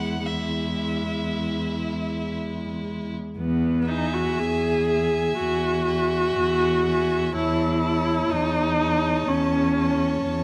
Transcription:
0.00 3.18 E2 soft
0.00 0.24 G#3 soft
0.00 0.23 E4 soft
0.00 0.27 F#5 medium
0.25 3.13 G#3 soft
0.25 3.13 E4 soft
0.25 2.35 E5 soft
3.38 4.27 E2 soft
3.38 3.89 B3 soft
3.88 4.15 D#4 medium
3.88 4.87 E5 soft
3.88 4.88 G#5 soft
4.14 4.40 F#4 medium
4.39 5.28 E2 soft
4.39 5.39 G#4 medium
4.90 5.86 E5 soft
4.90 5.86 G#5 soft
5.39 6.25 E2 soft
5.39 7.31 F#4 medium
5.87 6.83 E5 soft
5.87 6.84 G#5 soft
6.37 7.23 E2 soft
6.85 7.34 E5 soft
6.85 7.34 G#5 soft
7.35 8.20 E2 medium
7.35 8.32 E4 medium
7.35 7.82 C#5 soft
7.35 7.82 A5 soft
7.83 8.77 C#5 soft
7.83 8.77 A5 soft
8.31 9.16 E2 soft
8.31 9.29 D#4 medium
8.80 9.74 C#5 soft
8.80 9.74 A5 soft
9.27 10.12 E2 soft
9.27 10.44 C#4 medium
9.76 10.44 C#5 soft
9.76 10.44 A5 soft
10.24 10.44 E2 soft

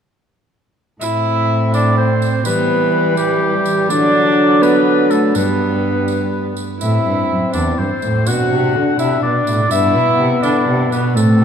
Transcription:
1.01 2.47 A2 medium
1.01 2.42 C4 medium
1.01 1.69 E4 loud
1.01 1.69 E5 loud
1.01 tambourine medium
1.73 1.99 D4 medium
1.73 1.97 D5 loud
1.73 tambourine soft
1.98 2.45 C4 medium
1.98 2.45 C5 medium
2.22 tambourine medium
2.45 3.90 E3 medium
2.45 3.16 G3 medium
2.45 3.16 B3 loud
2.45 3.16 B4 loud
2.45 tambourine medium
3.17 3.91 G3 medium
3.17 3.89 G3 medium
3.17 3.89 G4 loud
3.17 tambourine medium
3.66 tambourine soft
3.89 5.37 D3 loud
3.89 5.33 F#3 medium
3.89 4.63 D4 loud
3.89 4.64 D5 loud
3.89 tambourine medium
4.61 5.09 B3 medium
4.61 5.12 B4 loud
4.61 tambourine medium
5.10 5.34 A3 medium
5.10 5.37 A4 medium
5.10 tambourine medium
5.35 6.61 G2 medium
5.35 6.54 G3 medium
5.35 6.54 B3 medium
5.35 6.57 B4 medium
5.35 tambourine medium
6.08 tambourine soft
6.57 tambourine medium
6.79 7.04 A2 medium
6.79 8.22 C4 medium
6.79 7.49 E4 loud
6.79 7.49 E5 loud
6.79 tambourine medium
7.05 7.29 G2 medium
7.30 7.38 F#2 medium
7.53 7.78 E2 medium
7.53 7.76 D4 medium
7.53 7.80 D5 medium
7.53 tambourine medium
7.77 7.87 G2 medium
7.77 8.25 C4 medium
7.77 8.29 C5 medium
8.02 8.29 A2 medium
8.02 tambourine soft
8.26 8.51 B2 medium
8.26 9.68 D4 medium
8.26 8.97 F#4 loud
8.26 8.99 F#5 loud
8.26 tambourine medium
8.52 8.77 C3 medium
8.76 8.99 D3 medium
8.98 9.23 C3 medium
8.98 9.21 E4 medium
8.98 9.22 E5 loud
8.98 tambourine medium
9.22 9.47 B2 medium
9.22 9.69 D4 medium
9.22 9.70 D5 loud
9.47 9.70 A2 medium
9.47 tambourine medium
9.71 9.97 G2 medium
9.71 11.13 B3 medium
9.71 10.42 E4 loud
9.71 10.44 E5 loud
9.71 tambourine medium
9.95 10.18 B2 medium
10.19 10.43 C3 medium
10.43 10.67 D3 medium
10.43 10.91 D4 medium
10.43 10.91 D5 loud
10.43 tambourine medium
10.68 10.91 C3 medium
10.92 11.17 B2 medium
10.92 11.15 B3 medium
10.92 11.15 B4 medium
10.92 tambourine soft
11.16 11.43 A2 medium
11.16 11.45 A3 medium
11.16 11.45 C4 medium
11.16 11.45 A4 medium
11.16 tambourine medium
11.41 11.45 C3 medium

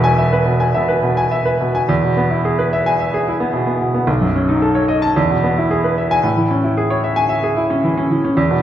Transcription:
0.00 0.70 E1 medium
0.00 0.71 E2 medium
0.00 0.12 B2 medium
0.00 0.33 B4 medium
0.00 0.18 E5 medium
0.00 0.26 G#5 medium
0.18 0.40 E5 medium
0.33 0.55 B4 medium
0.46 0.68 B2 medium
0.60 0.83 G#5 medium
0.74 0.97 B2 medium
0.74 0.97 E5 medium
0.89 1.12 B4 medium
1.03 1.26 B2 medium
1.17 1.40 G#5 medium
1.31 1.55 E5 medium
1.46 1.69 B4 medium
1.60 1.84 B2 medium
1.75 1.89 G#5 medium
1.89 4.04 E2 medium
2.03 2.25 B2 medium
2.17 2.39 B3 medium
2.31 2.53 E4 medium
2.45 2.67 G#4 medium
2.59 2.81 B4 medium
2.73 2.94 E5 medium
2.86 3.08 G#5 medium
3.00 3.21 E5 medium
3.14 3.35 G#4 medium
3.28 3.49 E4 medium
3.40 3.62 B3 medium
3.53 3.75 B2 medium
3.67 3.89 B3 medium
3.81 4.03 B2 soft
3.94 4.08 B3 medium
4.07 5.13 B1 medium
4.21 4.43 F#2 medium
4.36 4.57 C#4 medium
4.49 4.70 D#4 medium
4.62 4.84 A4 medium
4.75 4.97 C#5 medium
4.88 5.11 D#5 medium
5.02 5.16 A5 medium
5.16 6.21 E2 medium
5.30 5.52 B2 soft
5.44 5.65 B3 medium
5.58 5.79 E4 medium
5.71 5.92 G#4 medium
5.84 6.05 B4 medium
5.98 6.19 E5 medium
6.11 6.24 G#5 medium
6.23 8.32 A2 medium
6.37 6.58 E3 medium
6.51 6.72 C#4 medium
6.64 6.85 E4 medium
6.77 6.98 G#4 medium
6.90 7.11 C#5 medium
7.04 7.25 E5 medium
7.16 7.38 G#5 medium
7.29 7.51 E5 medium
7.43 7.65 G#4 medium
7.57 7.78 E4 medium
7.70 7.91 C#4 medium
7.84 8.05 E3 medium
7.97 8.18 C#4 medium
8.10 8.31 E3 medium
8.24 8.37 C#4 medium
8.37 8.62 E2 medium
8.51 8.62 B2 medium

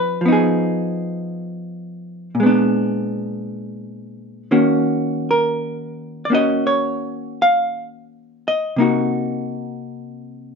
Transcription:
0.00 0.22 C#3 soft
0.00 0.20 F3 soft
0.00 0.24 C4 soft
0.00 0.25 D#4 soft
0.00 0.32 B4 medium
0.21 2.35 F3 soft
0.26 2.37 B3 soft
0.26 2.39 D#4 soft
0.32 2.41 G#4 soft
2.35 4.49 A#2 soft
2.40 4.51 G#3 soft
2.40 4.51 B3 soft
2.46 4.52 D4 soft
4.51 8.77 D#3 soft
4.51 6.29 A#3 soft
4.51 6.30 C#4 soft
4.51 6.32 F#4 soft
5.31 6.25 A#4 medium
6.25 6.32 D5 medium
6.30 8.76 A#3 soft
6.30 8.77 C#4 soft
6.30 8.78 F#4 soft
6.35 6.66 D#5 medium
6.67 7.40 C#5 medium
7.42 8.47 F5 medium
8.48 10.55 D#5 medium
8.76 10.55 C3 soft
8.76 10.55 A#3 soft
8.76 10.55 D#4 soft
8.81 10.55 F#4 soft

